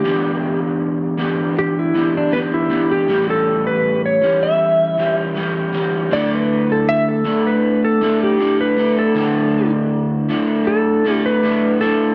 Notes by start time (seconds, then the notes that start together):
Already playing: G4
0.04 E3 B3 D4 G4
1.18 E3 B3 D4 G4
1.59 G4
1.79 E4
1.94 E3 B3 D4 G4
2.17 D4
2.32 E3 B3 D4 G4 B4
2.54 E4
2.69 E3 B3 D4 G4
2.91 G4
3.08 A2 E3 G3 C#4 G4
3.30 A4
3.67 B4
4.06 C#5
4.21 E3 G3 C#4 G4
4.43 E5
4.97 E3 G3 C#4 G4
5.35 E3 G3 C#4 G4
5.73 E3 G3 C#4 G4
6.11 D3 A3 D4 E4 A4 D5
6.33 B4
6.72 A4
6.89 E5
7.08 A4
7.25 A3 D4 E4 A4
7.47 B4
7.84 A4
8.01 A3 D4 E4 A4
8.23 G4
8.39 A3 D4 E4 A4
8.61 B4
8.77 A3 D4 E4 A4
8.99 A4
9.15 D3 A3 D4 E4 A4
10.29 A3 D4 E4 A4
10.67 A4
11.05 A3 D4 E4 A4
11.14 G4
11.26 B4
11.43 A3 D4 E4 A4
11.80 A3 D4 E4 A4